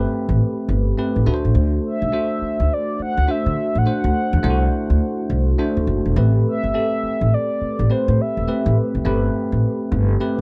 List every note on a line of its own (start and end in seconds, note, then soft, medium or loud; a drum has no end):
0.00 0.98 A3 medium
0.00 0.98 C4 medium
0.00 0.99 G4 medium
0.00 0.99 B4 loud
0.29 0.37 A1 medium
0.69 0.91 G1 medium
0.98 1.25 A3 medium
0.98 1.27 C4 medium
0.98 1.27 G4 medium
0.98 1.26 B4 medium
1.16 1.24 A1 medium
1.26 1.41 D2 medium
1.26 2.05 A3 medium
1.26 2.05 D4 medium
1.26 2.05 F#4 medium
1.26 1.35 B4 medium
1.34 2.08 C5 loud
1.45 1.53 A1 medium
1.55 1.78 D2 loud
1.86 2.75 E5 loud
2.02 2.10 C2 loud
2.12 3.17 A3 medium
2.12 3.17 D4 medium
2.12 3.17 F#4 medium
2.12 3.17 C5 medium
2.42 muted upright bass stroke soft
2.60 2.68 D2 medium
2.73 3.01 D5 loud
2.99 3.32 F#5 loud
2.99 muted upright bass stroke medium
3.17 3.26 D2 medium
3.27 3.80 A3 medium
3.27 3.80 D4 medium
3.27 3.80 F#4 medium
3.27 3.81 C5 medium
3.27 3.79 E5 loud
3.46 3.55 D3 medium
3.75 3.84 A1 medium
3.75 5.50 F#5 loud
3.86 4.38 A3 medium
3.86 4.38 D4 medium
3.86 4.38 F#4 medium
3.86 4.39 C5 medium
4.04 4.12 D2 loud
4.33 4.41 E2 loud
4.43 4.66 C2 loud
4.43 5.48 A3 loud
4.43 5.48 D4 medium
4.43 4.52 E4 medium
4.43 5.48 C5 medium
4.50 5.51 F#4 medium
4.90 4.99 D2 medium
5.30 5.53 C2 loud
5.59 6.11 A3 medium
5.59 6.11 D4 medium
5.59 6.11 F#4 medium
5.59 6.11 C5 medium
5.77 5.85 D2 medium
5.87 6.02 F#1 medium
6.06 6.14 E1 medium
6.16 6.39 A1 loud
6.16 6.69 A3 medium
6.16 6.69 C4 medium
6.16 6.69 G4 medium
6.16 6.69 B4 loud
6.47 7.35 E5 loud
6.63 6.72 G1 medium
6.74 7.78 A3 medium
6.74 7.79 C4 medium
6.74 7.79 G4 medium
6.74 7.79 A4 medium
7.03 muted upright bass stroke soft
7.21 7.30 A1 medium
7.34 7.93 D5 loud
7.61 muted upright bass stroke medium
7.79 7.88 A1 medium
7.90 8.42 A3 medium
7.90 8.42 C4 medium
7.90 8.42 G4 medium
7.90 8.43 B4 medium
7.90 8.23 C5 medium
8.08 8.16 A2 loud
8.21 8.78 E5 loud
8.37 8.45 E1 medium
8.47 9.00 A3 medium
8.47 9.00 C4 medium
8.47 9.00 G4 medium
8.47 9.00 B4 medium
8.66 8.74 A1 loud
8.95 9.03 C2 medium
9.05 9.28 G1 loud
9.05 10.09 A3 loud
9.05 10.10 C4 medium
9.05 10.10 G4 medium
9.05 10.10 B4 loud
9.52 9.61 A1 medium
9.92 10.14 G1 loud
10.20 10.41 A3 medium
10.20 10.41 C4 medium
10.20 10.41 G4 medium
10.20 10.41 B4 medium